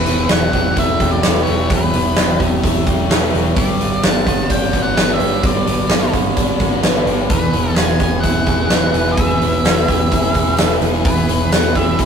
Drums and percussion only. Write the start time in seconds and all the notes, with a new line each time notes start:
0.06 open hi-hat
0.29 snare, open hi-hat
0.53 kick, open hi-hat
0.77 kick, open hi-hat
1.00 kick, open hi-hat
1.23 snare, open hi-hat
1.47 open hi-hat
1.70 kick, open hi-hat
1.93 open hi-hat
2.16 snare, open hi-hat
2.40 kick, open hi-hat
2.64 kick, open hi-hat
2.87 kick, open hi-hat
3.11 snare, open hi-hat
3.35 open hi-hat
3.57 kick, open hi-hat
3.81 open hi-hat
4.03 snare, open hi-hat
4.27 kick, open hi-hat
4.50 kick, open hi-hat
4.73 kick, open hi-hat
4.97 snare, open hi-hat
5.20 open hi-hat
5.43 kick, open hi-hat
5.67 open hi-hat
5.89 snare, open hi-hat
6.13 kick, open hi-hat
6.37 kick, open hi-hat
6.60 kick, open hi-hat
6.83 snare, open hi-hat
7.07 open hi-hat
7.30 kick, open hi-hat
7.53 open hi-hat
7.76 snare, open hi-hat, tambourine
8.00 kick, open hi-hat, tambourine
8.23 kick, open hi-hat, tambourine
8.46 kick, open hi-hat, tambourine
8.70 snare, open hi-hat, tambourine
8.94 open hi-hat, tambourine
9.17 kick, open hi-hat
9.41 open hi-hat, tambourine
9.65 snare, open hi-hat, tambourine
9.88 kick, open hi-hat, tambourine
10.12 kick, open hi-hat, tambourine
10.34 kick, open hi-hat, tambourine
10.57 snare, open hi-hat, tambourine
10.81 open hi-hat, tambourine
11.05 kick, open hi-hat
11.28 open hi-hat, tambourine
11.52 snare, open hi-hat, tambourine
11.75 kick, open hi-hat, tambourine
11.98 kick, open hi-hat, tambourine